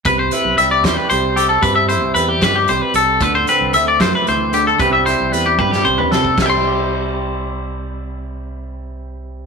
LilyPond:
<<
  \new Staff \with { instrumentName = "Clean electric guitar" } { \time 6/8 \key c \major \tempo 4. = 76 b'16 c''16 b'8 e''16 d''16 c''16 b'16 c''8 g'16 a'16 | b'16 e''16 c''8 b'16 g'16 b'16 g'16 c''16 b'16 a'8 | b'16 c''16 b'8 e''16 d''16 c''16 b'16 c''8 g'16 a'16 | b'16 e''16 c''8 b'16 g'16 b'16 g'16 c''16 b'16 a'8 |
<e'' g'' c'''>2.~ | <e'' g'' c'''>2. | }
  \new Staff \with { instrumentName = "Clean electric guitar" } { \clef bass \time 6/8 \key c \major << { r8 e'4 g'4 a'8 | r8 e'4 g'4 a'8~ | a'8 c'2~ c'8 | <g e' g' b'>8 e'4 g'4 a'8 |
<g e' g'>2.~ | <g e' g'>2. | } \\ { c4 g4 c4 | c4 g4 c4 | d4 a8 fis8 e8 d8 | c4 g4 c4 |
c2.~ | c2. | } >> }
  \new Staff \with { instrumentName = "Fingered electric bass" } { \clef bass \time 6/8 \key c \major c,8 r16 b,,16 c,8 e,16 r16 c,4 | g,8. c,16 e,8 g,8 c,16 r16 c,8 | d,8 r16 c,16 d,8 fis,16 r16 d,4 | c,8. c,16 e,8 g,8 c,16 r16 c8 |
c,2.~ | c,2. | }
  \new DrumStaff \with { instrumentName = "Drums" } \drummode { \time 6/8 <hh bd>8 hh8 hh8 <hh bd sn>8 hh8 hh8 | <hh bd>8 hh8 hh8 <hh bd sn>8 hh8 hh8 | <hh bd>8 hh8 hh8 <hh bd sn>8 hh8 hh8 | <hh bd>8 hh8 hh8 <bd tommh>16 sn8 toml16 sn16 bd16 |
<cymc bd sn>4. r4. | r4. r4. | }
>>